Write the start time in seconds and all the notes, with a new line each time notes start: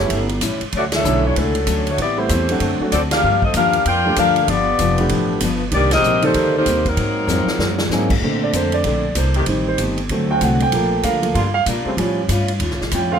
Already playing: G3 A3 B3 C#4 E4 G4 C#5
0.10 G1 A2 G3 C#4 E4, kick, ride
0.29 ride
0.41 A1 A2 G3 C#4 E4, kick, hi-hat pedal, ride
0.61 muted upright bass stroke, ride
0.72 D2 D3 F#3 A3 C#4 D5, kick, ride
0.76 F#4
0.92 D4 A4, snare, ride
0.96 C#5 E5
1.04 B1 D3 F#3 A3 C#4 D4 E4, hi-hat pedal
1.27 A3 D4 F#4 C#5
1.36 C#2 D3 F#3 A3 C#4 D4 A4, kick, ride
1.55 ride
1.67 D2 D3 F#3 A3 C#4, kick, hi-hat pedal, ride
1.87 A3 D4 F#4 C#5, ride
1.97 A1 A2 G3 C4 E4, kick, ride
2.01 B3 E4 G4 D5
2.17 G3 A3 B3 C4 E4 G4 C5
2.29 E2 A2 G3 C4 E4, kick, hi-hat pedal, ride
2.49 F#3 A3 C4 D4 F#4, ride
2.60 F#2 D3 A3 C4 F#4, kick, ride
2.80 F#3 A3 C4 D4 F#4, muted upright bass stroke
2.92 D2 D3 A3 C4 F#4 A4 D5, kick, hi-hat pedal, ride
3.11 D4 G4 A#4 F5, snare, ride
3.23 G2 F3 A#3 D4
3.42 C4 F4 A4 D#5, kick
3.54 D#2 G2 F3 A#3 D4 G4 A#4 F5, kick, hi-hat pedal, ride
3.73 ride
3.85 F2 G2 F3 A#3 D4 F4 A#4 D5 G5, kick, ride
4.06 F3 A3 A#3 D4 G4
4.16 D2 G2 F3 A#3 D4 G4 A#4 F5, kick, hi-hat pedal, ride
4.36 ride
4.47 G1 G2 F3 B3 D4 F4 G4 D5, kick, ride
4.79 F1 G2 F3 B3 D4, kick, hi-hat pedal, ride
4.98 F3 A3 B3 D4 G4, ride
5.09 A1 G2 F3 B3 D4, kick, ride
5.40 G1 G2 F3 B3 D4, kick, hi-hat pedal, ride
5.71 C2 C3 D#3 G3 A#3 C4 D4 D#4 G4 D5, kick, ride
5.76 D#4
5.91 C4 G4 A#4 D#5, snare, ride
6.03 A#1 C3 G3 A#3, hi-hat pedal
6.07 D#4
6.22 D#3 A#3 C4 D#4 G4 A4 C5 D5, ride
6.34 D2 C3 G3 A#3 D#4, kick, ride
6.57 A#3 D#4 G4 C5
6.66 D#2 C3 G3 A#3 D#4, kick, hi-hat pedal, ride
6.85 F#3 C4 D#4 A#4, kick, ride
6.97 G#2 F#3 A#3, kick, ride
7.01 C4
7.27 F2 G#2 F#3 A#3 C4, snare, hi-hat pedal
7.46 muted upright bass stroke, snare
7.58 F#2 G#2 F#3 A#3 C4, snare
7.78 snare
7.89 G#2 F#3 A#3 C4 D#4 G#4, snare, hi-hat pedal
8.10 kick, crash
8.22 A#2 D3 A3 A#3 C4 D4 A4 C5, kick
8.43 D5
8.53 F2 A#3 D4 A4 C5, kick, hi-hat pedal, ride
8.72 D5, ride
8.84 A#1 D3 A3 A#3 C4 D4 A4 C5, kick, ride
9.15 C2 A#3 D4 A4 C5, kick, hi-hat pedal, ride
9.34 D#3 A3 C4 G4, ride
9.46 A1 D#3 G3 A3 C4 D#4 G4 C5, kick, ride
9.68 C5
9.78 G1 A3 D#4 G4 C5, kick, hi-hat pedal, ride
9.98 ride
10.09 D2 D3 F#3 A3 C4 F#4, kick, ride
10.27 D3 A3 C4 F#4 G5
10.41 C2 D3 A3 C4 F#4 F#5, kick, hi-hat pedal, ride
10.60 G5, ride
10.72 A#1 F3 G3 A3 A#3 D4 F4, kick, ride
10.76 A#4
11.03 D2 G3 D4 F4 A#4 F5, kick, hi-hat pedal, ride
11.22 F3 A3 A#3, ride
11.34 G2 D3 G3 A#3 D4 F4 A#4, kick, ride
11.54 F5
11.66 A#2 G3 D4 F4 A#4, kick, hi-hat pedal, ride
11.84 C#3 G3 A3 C4, muted upright bass stroke
11.97 A2 F3 G3 C#4 F4, kick, ride
12.28 G2 A2 G3 C#4 F4, kick, hi-hat pedal, ride
12.48 ride
12.60 D#2 A2 G3 C#4 F4, kick, ride
12.71 C#2, snare
12.81 A1, snare
12.91 F2 A2 G3 C#4 F4 G5, kick, hi-hat pedal, ride
13.10 D3 A3 C4 F4 F5